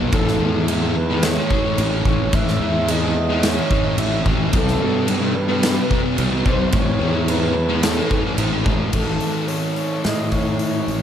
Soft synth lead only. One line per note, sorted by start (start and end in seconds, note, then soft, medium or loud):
0.11 0.63 A4 loud
0.94 1.25 B4 loud
1.23 2.06 C#5 loud
2.07 2.36 C#5 loud
2.34 2.92 E5 loud
2.90 3.47 D#5 loud
3.45 4.01 C#5 loud
3.99 4.40 E5 loud
4.55 5.39 A4 loud
5.37 6.19 B4 medium
6.48 6.76 C5 loud
6.75 7.31 C#5 loud
7.29 7.86 B4 loud
7.84 8.39 A4 medium
8.94 9.49 A4 loud
9.48 9.74 C#5 medium
9.75 10.02 C#5 loud
10.05 10.34 D#5 loud
10.32 11.02 C#5 loud